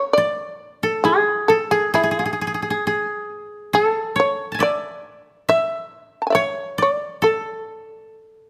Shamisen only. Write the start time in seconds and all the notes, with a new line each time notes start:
0.13 D5
1.04 G#4
1.48 A4
1.71 G#4
1.95 E4
2.37 G#4
3.75 A4
4.20 C#5
4.63 D5
5.49 E5
6.22 A5
6.27 E5 G#5
6.32 C#5 D5
6.82 D5
7.24 A4